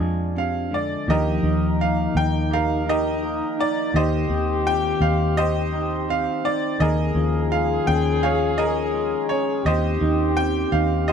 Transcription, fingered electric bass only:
0, 0, Header, 1, 2, 480
1, 0, Start_track
1, 0, Key_signature, -3, "major"
1, 0, Tempo, 715137
1, 726, Time_signature, 4, 2, 24, 8
1, 7468, End_track
2, 0, Start_track
2, 0, Title_t, "Fingered electric bass"
2, 0, Program_c, 0, 33
2, 0, Note_on_c, 0, 41, 70
2, 637, Note_off_c, 0, 41, 0
2, 724, Note_on_c, 0, 39, 82
2, 937, Note_off_c, 0, 39, 0
2, 960, Note_on_c, 0, 39, 70
2, 1386, Note_off_c, 0, 39, 0
2, 1442, Note_on_c, 0, 39, 85
2, 2290, Note_off_c, 0, 39, 0
2, 2645, Note_on_c, 0, 39, 79
2, 2856, Note_off_c, 0, 39, 0
2, 2882, Note_on_c, 0, 39, 70
2, 3305, Note_off_c, 0, 39, 0
2, 3359, Note_on_c, 0, 39, 88
2, 4205, Note_off_c, 0, 39, 0
2, 4565, Note_on_c, 0, 39, 80
2, 4774, Note_off_c, 0, 39, 0
2, 4798, Note_on_c, 0, 39, 74
2, 5221, Note_off_c, 0, 39, 0
2, 5288, Note_on_c, 0, 39, 86
2, 6128, Note_off_c, 0, 39, 0
2, 6480, Note_on_c, 0, 39, 77
2, 6690, Note_off_c, 0, 39, 0
2, 6720, Note_on_c, 0, 39, 73
2, 7143, Note_off_c, 0, 39, 0
2, 7197, Note_on_c, 0, 39, 87
2, 7468, Note_off_c, 0, 39, 0
2, 7468, End_track
0, 0, End_of_file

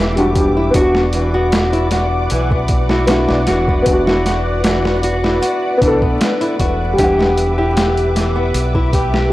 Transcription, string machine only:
0, 0, Header, 1, 2, 480
1, 0, Start_track
1, 0, Tempo, 779221
1, 463, Time_signature, 4, 2, 24, 8
1, 5747, End_track
2, 0, Start_track
2, 0, Title_t, "String machine"
2, 0, Program_c, 0, 50
2, 0, Note_on_c, 0, 71, 89
2, 0, Note_on_c, 0, 76, 76
2, 0, Note_on_c, 0, 86, 92
2, 440, Note_off_c, 0, 71, 0
2, 440, Note_off_c, 0, 76, 0
2, 458, Note_on_c, 0, 74, 77
2, 459, Note_on_c, 0, 71, 85
2, 459, Note_on_c, 0, 78, 74
2, 4275, Note_off_c, 0, 74, 0
2, 4276, Note_off_c, 0, 78, 0
2, 4279, Note_off_c, 0, 86, 0
2, 4306, Note_on_c, 0, 76, 78
2, 4309, Note_on_c, 0, 86, 97
2, 5747, Note_off_c, 0, 71, 0
2, 5747, Note_off_c, 0, 76, 0
2, 5747, Note_off_c, 0, 86, 0
2, 5747, End_track
0, 0, End_of_file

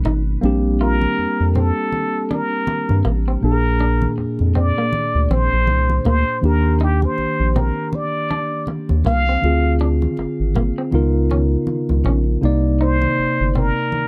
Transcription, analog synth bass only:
0, 0, Header, 1, 2, 480
1, 0, Start_track
1, 0, Tempo, 750000
1, 273, Time_signature, 4, 2, 24, 8
1, 9010, End_track
2, 0, Start_track
2, 0, Title_t, "Analog synth bass"
2, 0, Program_c, 0, 38
2, 38, Note_on_c, 0, 32, 84
2, 240, Note_off_c, 0, 32, 0
2, 276, Note_on_c, 0, 34, 112
2, 684, Note_off_c, 0, 34, 0
2, 759, Note_on_c, 0, 41, 47
2, 814, Note_off_c, 0, 41, 0
2, 899, Note_on_c, 0, 41, 85
2, 1101, Note_off_c, 0, 41, 0
2, 1858, Note_on_c, 0, 43, 90
2, 1940, Note_off_c, 0, 43, 0
2, 1955, Note_on_c, 0, 33, 84
2, 2159, Note_off_c, 0, 33, 0
2, 2196, Note_on_c, 0, 34, 103
2, 2604, Note_off_c, 0, 34, 0
2, 2677, Note_on_c, 0, 41, 43
2, 2732, Note_off_c, 0, 41, 0
2, 2819, Note_on_c, 0, 41, 90
2, 3022, Note_off_c, 0, 41, 0
2, 3297, Note_on_c, 0, 38, 86
2, 3379, Note_off_c, 0, 38, 0
2, 3394, Note_on_c, 0, 34, 88
2, 3514, Note_off_c, 0, 34, 0
2, 3538, Note_on_c, 0, 34, 81
2, 3636, Note_on_c, 0, 36, 86
2, 3646, Note_off_c, 0, 34, 0
2, 3839, Note_off_c, 0, 36, 0
2, 3876, Note_on_c, 0, 38, 91
2, 3995, Note_off_c, 0, 38, 0
2, 4115, Note_on_c, 0, 39, 104
2, 4523, Note_off_c, 0, 39, 0
2, 4595, Note_on_c, 0, 34, 49
2, 4651, Note_off_c, 0, 34, 0
2, 4735, Note_on_c, 0, 34, 90
2, 4939, Note_off_c, 0, 34, 0
2, 5700, Note_on_c, 0, 39, 92
2, 5781, Note_off_c, 0, 39, 0
2, 5797, Note_on_c, 0, 36, 77
2, 6000, Note_off_c, 0, 36, 0
2, 6038, Note_on_c, 0, 38, 98
2, 6445, Note_off_c, 0, 38, 0
2, 6517, Note_on_c, 0, 32, 48
2, 6573, Note_off_c, 0, 32, 0
2, 6656, Note_on_c, 0, 32, 76
2, 6860, Note_off_c, 0, 32, 0
2, 6996, Note_on_c, 0, 37, 92
2, 7404, Note_off_c, 0, 37, 0
2, 7616, Note_on_c, 0, 37, 90
2, 7699, Note_off_c, 0, 37, 0
2, 7715, Note_on_c, 0, 34, 98
2, 7919, Note_off_c, 0, 34, 0
2, 7956, Note_on_c, 0, 36, 98
2, 8364, Note_off_c, 0, 36, 0
2, 8438, Note_on_c, 0, 31, 45
2, 8493, Note_off_c, 0, 31, 0
2, 8579, Note_on_c, 0, 31, 89
2, 8781, Note_off_c, 0, 31, 0
2, 9010, End_track
0, 0, End_of_file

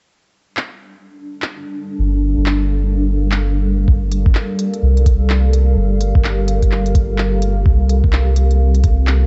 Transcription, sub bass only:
0, 0, Header, 1, 2, 480
1, 0, Start_track
1, 0, Key_signature, -2, "minor"
1, 0, Tempo, 472441
1, 101, Time_signature, 4, 2, 24, 8
1, 9414, End_track
2, 0, Start_track
2, 0, Title_t, "Sub bass"
2, 0, Program_c, 0, 38
2, 2021, Note_on_c, 0, 31, 91
2, 2390, Note_off_c, 0, 31, 0
2, 2410, Note_on_c, 0, 31, 93
2, 3930, Note_off_c, 0, 31, 0
2, 3941, Note_on_c, 0, 31, 89
2, 4409, Note_off_c, 0, 31, 0
2, 4902, Note_on_c, 0, 36, 85
2, 5850, Note_off_c, 0, 36, 0
2, 5858, Note_on_c, 0, 31, 91
2, 6229, Note_off_c, 0, 31, 0
2, 6248, Note_on_c, 0, 31, 95
2, 7769, Note_off_c, 0, 31, 0
2, 7781, Note_on_c, 0, 36, 94
2, 8150, Note_off_c, 0, 36, 0
2, 8167, Note_on_c, 0, 36, 96
2, 9414, Note_off_c, 0, 36, 0
2, 9414, End_track
0, 0, End_of_file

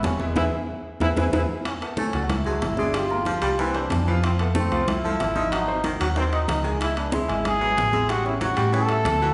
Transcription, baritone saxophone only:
0, 0, Header, 1, 2, 480
1, 0, Start_track
1, 0, Tempo, 322061
1, 540, Time_signature, 4, 2, 24, 8
1, 13916, End_track
2, 0, Start_track
2, 0, Title_t, "Baritone saxophone"
2, 0, Program_c, 0, 67
2, 2954, Note_on_c, 0, 57, 81
2, 3335, Note_off_c, 0, 57, 0
2, 3665, Note_on_c, 0, 56, 70
2, 3917, Note_off_c, 0, 56, 0
2, 4155, Note_on_c, 0, 56, 80
2, 4537, Note_off_c, 0, 56, 0
2, 4868, Note_on_c, 0, 53, 78
2, 4994, Note_off_c, 0, 53, 0
2, 5093, Note_on_c, 0, 55, 82
2, 5222, Note_off_c, 0, 55, 0
2, 5354, Note_on_c, 0, 52, 85
2, 5736, Note_off_c, 0, 52, 0
2, 6074, Note_on_c, 0, 52, 75
2, 6198, Note_off_c, 0, 52, 0
2, 6784, Note_on_c, 0, 57, 80
2, 7170, Note_off_c, 0, 57, 0
2, 7522, Note_on_c, 0, 53, 74
2, 7770, Note_off_c, 0, 53, 0
2, 7979, Note_on_c, 0, 53, 76
2, 8366, Note_off_c, 0, 53, 0
2, 8712, Note_on_c, 0, 51, 81
2, 8837, Note_off_c, 0, 51, 0
2, 8965, Note_on_c, 0, 54, 81
2, 9086, Note_off_c, 0, 54, 0
2, 9190, Note_on_c, 0, 51, 83
2, 9573, Note_off_c, 0, 51, 0
2, 9889, Note_on_c, 0, 51, 72
2, 10019, Note_off_c, 0, 51, 0
2, 10626, Note_on_c, 0, 56, 82
2, 11010, Note_off_c, 0, 56, 0
2, 11340, Note_on_c, 0, 54, 74
2, 11593, Note_off_c, 0, 54, 0
2, 11828, Note_on_c, 0, 56, 77
2, 12211, Note_off_c, 0, 56, 0
2, 12530, Note_on_c, 0, 54, 83
2, 12660, Note_off_c, 0, 54, 0
2, 12767, Note_on_c, 0, 55, 80
2, 12897, Note_off_c, 0, 55, 0
2, 13002, Note_on_c, 0, 52, 83
2, 13393, Note_off_c, 0, 52, 0
2, 13736, Note_on_c, 0, 52, 77
2, 13863, Note_off_c, 0, 52, 0
2, 13916, End_track
0, 0, End_of_file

